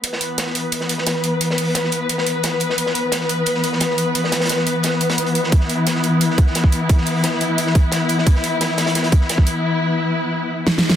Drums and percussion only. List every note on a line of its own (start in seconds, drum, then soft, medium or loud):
0.04 closed hi-hat medium
0.13 snare medium
0.21 closed hi-hat medium
0.38 snare loud
0.38 closed hi-hat medium
0.47 snare soft
0.55 closed hi-hat medium
0.72 closed hi-hat medium
0.81 snare soft
0.89 closed hi-hat medium
0.98 snare soft
1.07 snare loud
1.07 closed hi-hat loud
1.07 closed hi-hat medium
1.15 snare soft
1.24 closed hi-hat medium
1.41 closed hi-hat medium
1.50 snare medium
1.58 closed hi-hat medium
1.58 open hi-hat medium
1.75 snare loud
1.75 closed hi-hat medium
1.84 snare soft
1.92 closed hi-hat medium
2.09 closed hi-hat medium
2.18 snare medium
2.27 closed hi-hat medium
2.43 snare loud
2.43 closed hi-hat medium
2.60 closed hi-hat medium
2.70 snare soft
2.78 closed hi-hat medium
2.86 snare medium
2.95 closed hi-hat medium
3.12 snare loud
3.12 closed hi-hat medium
3.21 snare soft
3.29 closed hi-hat medium
3.46 closed hi-hat medium
3.55 snare soft
3.64 closed hi-hat medium
3.73 snare soft
3.80 snare loud
3.80 closed hi-hat medium
3.90 snare soft
3.98 closed hi-hat medium
4.15 closed hi-hat medium
4.24 snare medium
4.32 snare loud
4.32 closed hi-hat medium
4.40 snare medium
4.40 closed hi-hat medium
4.45 snare medium
4.45 closed hi-hat medium
4.49 snare loud
4.49 closed hi-hat medium
4.58 snare soft
4.67 closed hi-hat medium
4.83 snare loud
4.83 closed hi-hat medium
4.92 snare soft
5.01 closed hi-hat medium
5.10 snare loud
5.10 closed hi-hat medium
5.18 snare soft
5.18 closed hi-hat medium
5.26 closed hi-hat medium
5.35 closed hi-hat medium
5.44 snare soft
5.52 kick loud
5.52 closed hi-hat medium
5.61 snare medium
5.70 closed hi-hat medium
5.87 snare loud
5.87 closed hi-hat medium
5.95 snare soft
6.03 closed hi-hat medium
6.21 closed hi-hat medium
6.30 snare soft
6.38 kick loud
6.38 closed hi-hat medium
6.47 snare soft
6.55 snare loud
6.55 closed hi-hat medium
6.64 kick medium
6.64 snare soft
6.72 closed hi-hat medium
6.89 kick loud
6.89 closed hi-hat medium
6.97 snare medium
7.06 closed hi-hat medium
7.06 open hi-hat medium
7.24 snare loud
7.24 closed hi-hat medium
7.32 snare soft
7.40 closed hi-hat medium
7.58 closed hi-hat medium
7.67 snare medium
7.75 kick medium
7.75 closed hi-hat medium
7.92 snare loud
7.92 closed hi-hat medium
8.09 closed hi-hat medium
8.18 snare soft
8.27 kick loud
8.27 closed hi-hat medium
8.36 snare medium
8.44 closed hi-hat medium
8.61 snare loud
8.61 closed hi-hat medium
8.69 snare soft
8.78 snare loud
8.78 closed hi-hat medium
8.86 snare loud
8.86 closed hi-hat medium
8.95 snare loud
8.95 closed hi-hat medium
9.03 snare medium
9.03 closed hi-hat medium
9.12 kick loud
9.12 closed hi-hat medium
9.21 snare soft
9.29 snare loud
9.29 closed hi-hat medium
9.38 kick medium
9.38 snare soft
9.47 closed hi-hat medium
10.67 snare medium
10.78 snare medium
10.89 snare medium